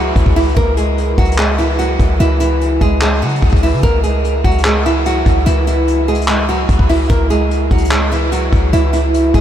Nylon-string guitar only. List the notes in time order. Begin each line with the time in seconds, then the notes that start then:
Already playing: F#3 F#4
0.36 E3 E4
0.57 A#3 A#4
0.77 G#3 G#4
1.18 F#3 F#4
1.39 G#3 G#4
1.59 E3 E4
1.79 F#3 F#4
2.20 E3 E4
2.40 E3 E4
2.82 G#3 G#4
3.02 G#3 G#4
3.22 F#3 F#4
3.63 E3 E4
3.83 A#3 A#4
4.04 G#3 G#4
4.45 F#3 F#4
4.65 G#3 G#4
4.86 E3 E4
5.06 F#3 F#4
5.46 E3 E4
5.67 E3 E4
6.08 G#3 G#4
6.28 G#3 G#4
6.49 F#3 F#4
6.89 E3 E4
7.10 A#3 A#4
7.30 G#3 G#4
7.71 F#3 F#4
7.92 G#3 G#4
8.12 E3 E4
8.32 F#3 F#4
8.73 E3 E4
8.93 E3 E4
9.35 G#3 G#4